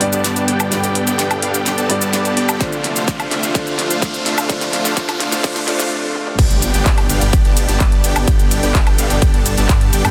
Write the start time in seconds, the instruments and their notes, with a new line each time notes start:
Already playing: detuned saw bass G1, analog synth pad D3 G3 B3 G4 B4, grand piano D5, riser
0.00 grand piano G2 B3 D4 G4 D5, open hi-hat
0.13 detuned saw bass G1, supersaw synth B3 D4 G4 D5 A5, closed hi-hat, shaker
0.24 detuned saw bass G1, supersaw synth B3 D4 G4 D5 A5, snare, closed hi-hat, shaker
0.36 closed hi-hat, shaker
0.48 detuned saw bass G1, supersaw synth B3 D4 G4 D5 G5, open hi-hat
0.60 detuned saw bass G1, supersaw synth B3 D4 G4 D5 G5, closed hi-hat, high woodblock, shaker
0.70 detuned saw bass G1, grand piano G2 B3 D4 G4 D5, supersaw synth B3 D4 G4 D5 G5, analog synth pad A4, snare, closed hi-hat, shaker
0.84 closed hi-hat, shaker
0.95 open hi-hat
1.07 detuned saw bass G1, supersaw synth B3 D4 G4 D5 G5, closed hi-hat, shaker
1.19 detuned saw bass G1, supersaw synth B3 D4 G4 D5 G5, snare, closed hi-hat, shaker
1.31 closed hi-hat, high woodblock, shaker
1.42 detuned saw bass G1, supersaw synth B3 D4 G4 D5 F5, open hi-hat
1.54 detuned saw bass G1, supersaw synth B3 D4 G4 D5 G5, closed hi-hat, shaker
1.66 detuned saw bass G1, supersaw synth B3 D4 G4 D5 G5, snare, closed hi-hat, shaker
1.78 detuned saw bass G1, supersaw synth B3 D4 G4 D5 A5, closed hi-hat, shaker
1.89 grand piano G2 B3 D4 G4 D5, open hi-hat
2.02 detuned saw bass G1, supersaw synth B3 D4 G4 D5 A5, closed hi-hat, shaker
2.13 detuned saw bass G2, supersaw synth B3 D4 G4 D5 A5, snare, closed hi-hat, shaker
2.25 closed hi-hat, shaker
2.37 detuned saw bass G1, supersaw synth B3 D4 G4 D5 G5, open hi-hat
2.49 detuned saw bass G2, supersaw synth B3 D4 G4 D5 G5, closed hi-hat, high woodblock, shaker
2.59 detuned saw bass D2, analog synth pad C3 F3 A3 D4 F4, grand piano D3 A3 D4 F4 C5, supersaw synth A3 D4 F4 C5 F5, kick, snare, closed hi-hat, shaker
2.73 closed hi-hat, shaker
2.84 snare, open hi-hat
2.96 detuned saw bass D2, supersaw synth A3 D4 F4 C5 F5, closed hi-hat, shaker
3.08 detuned saw bass D2, supersaw synth A3 D4 F4 C5 F5, kick, snare, closed hi-hat, shaker
3.20 closed hi-hat, high woodblock, shaker
3.31 detuned saw bass D2, supersaw synth A3 D4 F4 C5 E5, snare, open hi-hat
3.43 detuned saw bass D2, supersaw synth A3 D4 F4 C5 F5, closed hi-hat, shaker
3.54 detuned saw bass D2, grand piano D3 A3 D4 F4 C5, supersaw synth A3 D4 F4 C5 F5, kick, snare, closed hi-hat, shaker
3.67 closed hi-hat, shaker
3.79 snare, open hi-hat
3.90 detuned saw bass D2, supersaw synth A3 D4 F4 C5 F5, closed hi-hat, shaker
4.02 detuned saw bass D2, supersaw synth A3 D4 F4 C5 F5, kick, snare, closed hi-hat, shaker
4.14 closed hi-hat, shaker
4.26 detuned saw bass D2, supersaw synth A3 D4 F4 C5 E5, snare, open hi-hat
4.38 detuned saw bass D2, supersaw synth A3 D4 F4 C5 F5, closed hi-hat, high woodblock, shaker
4.48 detuned saw bass D2, grand piano D3 A3 D4 F4 C5, supersaw synth A3 D4 F4 C5 F5, kick, snare, closed hi-hat, shaker
4.61 snare, closed hi-hat, shaker
4.73 snare, open hi-hat
4.85 detuned saw bass D2, supersaw synth A3 D4 F4 C5 F5, snare, closed hi-hat, shaker
4.96 detuned saw bass D2, grand piano D3 A3 D4 F4 C5, supersaw synth A3 D4 F4 C5 F5, kick, snare, closed hi-hat, shaker
5.09 snare, closed hi-hat, high woodblock, shaker
5.20 snare, open hi-hat
5.32 detuned saw bass D2, supersaw synth A3 D4 F4 C5 F5, snare, closed hi-hat, shaker
5.43 detuned saw bass D2, grand piano D3 A3 D4 F4 C5, supersaw synth A3 D4 F4 C5 F5, kick, snare, closed hi-hat, shaker
5.56 snare, closed hi-hat, shaker
5.67 detuned saw bass D2, grand piano D3 A3 D4 F4 C5, supersaw synth A3 D4 F4 C5 F5, snare, open hi-hat
5.80 snare, closed hi-hat, shaker
6.15 high tom
6.27 mid tom
6.39 detuned saw bass G1, analog synth pad B2 D3 G3 D4 G4, supersaw synth B3 D4 G4 D5 G5, kick, closed hi-hat, ride, crash, impact, shaker
6.50 closed hi-hat, shaker
6.62 open hi-hat, ride, shaker
6.74 detuned saw bass G1, supersaw synth B3 D4 G4 D5 G5, closed hi-hat, shaker
6.86 detuned saw bass G1, supersaw synth B3 D4 G4 D5 G5, kick, clap, closed hi-hat, ride, shaker
6.98 closed hi-hat, high woodblock
7.09 detuned saw bass G1, supersaw synth B3 D4 G4 D5 F5, open hi-hat, ride, shaker
7.21 detuned saw bass G1, supersaw synth B3 D4 G4 D5 G5, closed hi-hat, shaker
7.33 detuned saw bass G1, supersaw synth B3 D4 G4 D5 G5, kick, closed hi-hat, ride, shaker
7.45 detuned saw bass G1, supersaw synth B3 D4 G4 D5 A5, closed hi-hat
7.57 open hi-hat, ride, shaker
7.69 detuned saw bass G1, supersaw synth B3 D4 G4 D5 A5, closed hi-hat, shaker
7.80 detuned saw bass G1, supersaw synth B3 D4 G4 D5 A5, kick, clap, closed hi-hat, ride, shaker
7.92 closed hi-hat
8.04 detuned saw bass G1, supersaw synth B3 D4 G4 D5 G5, open hi-hat, ride, shaker
8.16 detuned saw bass G1, supersaw synth B3 D4 G4 D5 G5, closed hi-hat, high woodblock, shaker
8.28 detuned saw bass G1, supersaw synth B3 D4 G4 D5 G5, analog synth pad A4, kick, closed hi-hat, ride, shaker
8.39 closed hi-hat, shaker
8.51 open hi-hat, ride, shaker
8.63 detuned saw bass G1, supersaw synth B3 D4 G4 D5 G5, closed hi-hat, shaker
8.75 detuned saw bass G1, supersaw synth B3 D4 G4 D5 G5, kick, clap, closed hi-hat, ride, shaker
8.87 closed hi-hat, high woodblock
8.98 detuned saw bass G1, supersaw synth B3 D4 G4 D5 F5, open hi-hat, ride, shaker
9.10 detuned saw bass G1, supersaw synth B3 D4 G4 D5 G5, closed hi-hat, shaker
9.22 detuned saw bass G1, supersaw synth B3 D4 G4 D5 G5, kick, closed hi-hat, ride, shaker
9.34 detuned saw bass G1, supersaw synth B3 D4 G4 D5 A5, closed hi-hat
9.46 open hi-hat, ride, shaker
9.57 detuned saw bass G1, supersaw synth B3 D4 G4 D5 A5, closed hi-hat, shaker
9.69 detuned saw bass G2, supersaw synth B3 D4 G4 D5 A5, kick, clap, closed hi-hat, ride, shaker
9.81 closed hi-hat
9.93 detuned saw bass G1, supersaw synth B3 D4 G4 D5 G5, open hi-hat, ride, shaker
10.05 detuned saw bass G2, supersaw synth B3 D4 G4 D5 G5, closed hi-hat, high woodblock, shaker